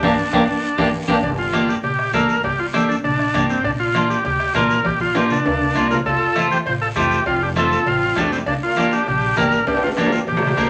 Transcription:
0.03 G1 A#3 D4 G4, bombo low, high conga, high timbale, long guiro
0.33 G1 A#3 D4 G4, bombo low, high conga, high timbale, long guiro
0.78 G1 A#3 D4 G4, bombo low, high conga, high timbale, long guiro
1.08 G1 A#3 C4 D4 G4, bombo low, high conga, high timbale, long guiro
1.23 G1 D4, bombo low, cowbell, low conga, long guiro
1.39 F4
1.53 A#3 D4 G4, bombo rim, cowbell, high conga, short guiro
1.69 G4, short guiro
1.83 A#1 G4, cowbell, low conga, long guiro
1.99 bombo rim
2.13 G1 A#3 D4 A4 A#4, bombo low, bombo rim, cowbell, high conga, low conga, low timbale, short guiro
2.29 short guiro
2.43 G1 G4, bombo low, cowbell, low conga, long guiro
2.59 F4
2.73 A#3 D4 G4 A4, bombo rim, cowbell, high conga, short guiro
2.89 D4, short guiro
3.04 A#1 D4, cowbell, low conga, long guiro
3.19 bombo rim
3.34 G1 A#3 D4 G4, bombo low, bombo rim, cowbell, high conga, low conga, short guiro
3.50 C4, short guiro
3.64 A#1 D4, bombo low, cowbell, low conga, long guiro
3.80 F4
3.95 A#3 D4 F4, bombo rim, cowbell, high conga, short guiro
4.10 G4, short guiro
4.25 D2 G4, cowbell, low conga, long guiro
4.40 bombo rim
4.54 A#1 A#3 D4 F4 A#4, bombo low, bombo rim, cowbell, high conga, low conga, low timbale, short guiro
4.70 short guiro
4.85 A#1 G4, bombo low, cowbell, high conga, long guiro
5.00 F4, high conga
5.15 A#3 D4 F4 G4, bombo rim, cowbell, high conga, high timbale, short guiro
5.30 D4, low conga, short guiro
5.46 D2 A#3 D4, cowbell, low conga, high timbale, long guiro
5.61 low conga
5.75 C2 A#3 D4 F4, bombo low, bombo rim, cowbell, short guiro
5.91 F4 A#4, low conga, low timbale, short guiro
6.05 F1 F4 A4, bombo low, cowbell, low conga, long guiro
6.36 A3 C4 F4, bombo rim, cowbell, high conga, short guiro
6.51 G4 C5, high conga, short guiro
6.66 A1 F4 C5, cowbell, low conga, long guiro
6.81 F4 A4
6.96 F1 A3 C4 F4 G4, bombo low, bombo rim, cowbell, high conga, short guiro
7.11 short guiro
7.26 F1 C4 F4, bombo low, cowbell, long guiro
7.41 D4 G4
7.56 A3 C4 F4 A4, bombo rim, cowbell, high conga, short guiro
7.71 short guiro
7.86 A1 C4 F4, cowbell, low conga, long guiro
8.16 F1 A3 C4 D4 G4, bombo low, bombo rim, cowbell, high conga, low timbale, short guiro
8.32 G3 C4, short guiro
8.46 G1 A#3 D4, bombo low, cowbell, low conga, long guiro
8.63 A#3 F4
8.76 A#3 D4 G4, bombo rim, cowbell, high conga, short guiro
8.91 D4 G4, short guiro
9.06 A#1 D4 G4, cowbell, low conga, long guiro
9.37 G1 A#3 D4 G4 A#4, bombo low, bombo rim, cowbell, high conga, low conga, low timbale, short guiro
9.52 short guiro
9.67 G1 D4 G4, bombo low, cowbell, high timbale, long guiro
9.77 high timbale
9.83 C4 F4, low timbale
9.97 A#3 D4 G4, bombo rim, cowbell, high conga, high timbale, short guiro
10.06 low timbale
10.12 C4 F4, high conga, short guiro
10.27 A#1 D4 G4, cowbell, long guiro
10.32 high conga
10.37 low timbale
10.42 bombo rim, low conga
10.47 low timbale
10.57 G1 A#3 D4 A#4, bombo low, bombo rim, cowbell, low timbale, short guiro
10.63 low conga

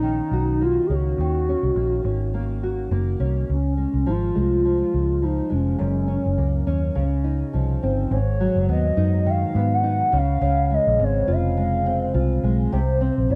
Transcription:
Already playing: A#1 A#3 C#4 D#4
0.03 D#3
0.31 B1 F#4
0.61 A#3 F4
0.86 C#2 C#4 G#4
0.93 F#4
1.18 D#2 D#3
1.49 C#4
1.63 C2
1.75 A#1 A#3
2.04 G#1 C#4
2.34 A#3
2.63 F#4
2.91 F#1 A#3
3.20 C2 C#4
3.50 C#2 C#4
3.77 G#3
3.94 C2
4.06 G#1 F3 F4
4.35 C2 G#3 F4
4.65 F3
4.94 C#2
5.22 F3 D#4
5.50 F1 G#3 C#4
5.78 F#1 F#2
6.08 C#4
6.26 F#1
6.38 C#2 A#3
6.67 D#2 C#4
6.95 C#2 C#3
7.24 D#4
7.53 C2 F3
7.83 G1 C4
8.11 G#1 G#2 C#5
8.40 F#3
8.56 F#1
8.69 D#2 B3 D#5
8.97 F#2 D#4
9.26 D#3 F5
9.55 G#2 B3
9.74 F#5
9.83 D#4
10.12 C#2 C#3
10.17 F5
10.41 C#2 C#3
10.70 G#3 D#5
10.87 A#1
10.99 G#1 C4
11.04 C#5
11.28 F1 F4
11.32 F5
11.57 G#3
11.86 C4
12.14 C2 F4
12.43 B1 G#3
12.72 C2 C3 C5
13.01 C4
13.18 A#1
13.30 G1 E4 D5

